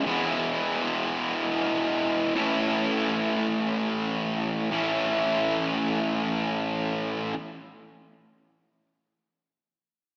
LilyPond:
\new Staff \with { instrumentName = "Distorted electric guitar" } { \time 6/8 \key a \major \tempo 4. = 49 <e gis b e'>2. | <a, e a cis' e'>2. | <a, e a cis' e'>2. | r2. | }